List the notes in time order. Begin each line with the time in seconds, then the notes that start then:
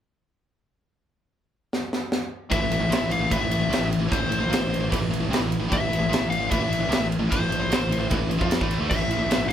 1.73 snare
1.93 snare
2.12 snare
2.50 A1 A2 E3 E5, kick, ride
2.60 A1 A2 E3
2.70 A1 A2 E3, ride
2.80 A1 A2 E3
2.90 A#1 A#2 F3, snare, ride
3.00 A1 A2 E3
3.09 A1 A2 E3 F5, ride
3.19 A1 A2 E3
3.30 A1 A2 E3 E5, kick, ride
3.40 A1 A2 E3
3.48 A1 A2 E3, ride
3.58 A1 A2 E3
3.69 C2 C3 G3, ride
3.74 A1, snare
3.79 A2 E3
3.92 ride
3.98 A1 A2 E3
4.09 A1 A2 E3 C5, kick
4.13 A1, ride
4.19 A2 E3
4.28 A1 A2 E3, ride
4.38 A1 A2 E3
4.48 A#1 A#2 F3
4.53 snare, ride
4.58 A1 A2 E3
4.69 A1 A2 E3
4.74 ride
4.79 A1 A2 E3
4.90 A1 A2 E3, kick, ride
4.98 A1 A2 E3
5.08 A1 A2 E3
5.13 ride
5.19 A1 A2 E3
5.29 C2 C3 G3
5.33 snare, ride
5.39 A1 A2 E3
5.52 ride
5.59 A1 A2 E3
5.69 A1 A2 E3, kick, ride
5.73 E5
5.78 A1 A2 E3
5.90 A1 A2 E3, ride
5.99 A1 A2 E3
6.09 A#1 A#2 F3
6.13 snare, ride
6.19 A1 A2 E3
6.30 A1 A2 E3 F5, ride
6.39 A1 A2 E3
6.49 A1 A2 E3 E5, kick, ride
6.59 A1 A2 E3
6.69 A1 A2 E3, ride
6.79 A1 A2 E3
6.89 C2 C3 G3, ride
6.93 snare
6.99 A1 A2 E3
7.12 ride
7.19 A1 A2 E3
7.29 A1 A2 E3 C5, kick, ride
7.40 A1 A2 E3
7.48 A1 A2 E3, ride
7.59 A1 A2 E3
7.68 A#1 A#2 F3
7.72 snare, ride
7.78 A1 A2 E3
7.87 A1
7.91 A2 E3, ride
7.98 A1 A2 E3
8.10 A1 A2 E3, kick, ride
8.18 A1 A2 E3
8.28 A1 A2 E3, ride
8.39 F2 F3 C4 F4, kick
8.51 snare, ride
8.58 A1 A2 E3 A3, kick
8.71 ride
8.78 D2 D3 A3
8.90 A1 A2 E3 E5, kick, crash
8.97 A1 A2 E3
9.08 A1 A2 E3, ride
9.18 A1 A2 E3
9.26 A#1 A#2
9.31 F3, snare, ride
9.37 A1 A2 E3
9.47 A1 A2 F5